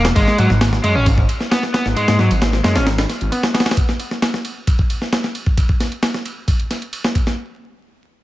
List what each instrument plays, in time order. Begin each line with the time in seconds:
Already playing: detuned saw bass E1
0.05 snare, ride
0.15 detuned saw bass G#1, overdriven electric guitar G#3, kick, ride
0.28 snare
0.38 detuned saw bass G#2, overdriven electric guitar F#3, ride
0.50 detuned saw bass G#1, snare
0.61 snare, ride
0.73 snare
0.84 detuned saw bass F#2, overdriven electric guitar G#3, ride
0.95 detuned saw bass G#1, overdriven electric guitar C#4
1.06 kick, ride
1.18 kick
1.29 ride
1.41 snare
1.51 overdriven electric guitar B3, snare, ride
1.63 snare
1.74 overdriven electric guitar B3, snare, ride
1.86 detuned saw bass G#1, snare
1.96 detuned saw bass G#2, overdriven electric guitar G#3, ride
2.08 detuned saw bass G#2, snare, ride
2.19 detuned saw bass G#2, overdriven electric guitar F#3, snare
2.31 detuned saw bass G#1, ride
2.42 snare, ride
2.53 snare
2.64 detuned saw bass F#2, overdriven electric guitar G#3, snare, ride
2.76 detuned saw bass G#1, overdriven electric guitar C#4, snare, ride
2.87 snare, ride
2.98 snare, ride
3.10 snare, ride
3.21 detuned saw bass G#1, ride
3.32 overdriven electric guitar B3, ride
3.43 snare
3.54 overdriven electric guitar B3, snare, ride
3.60 snare, ride
3.66 snare, ride
3.71 snare, ride
3.77 kick, ride
3.89 snare
3.99 ride
4.11 snare
4.22 snare, ride
4.34 snare
4.45 ride
4.67 kick, ride
4.79 kick
4.90 ride
5.02 snare
5.13 snare, ride
5.24 snare
5.35 ride
5.46 kick
5.57 kick, ride
5.69 kick
5.80 snare, ride
5.92 ride
6.03 snare, ride
6.14 snare
6.25 ride
6.48 kick, ride
6.60 ride
6.71 snare, ride
6.82 ride
6.93 ride
7.04 snare
7.15 kick, ride
7.27 snare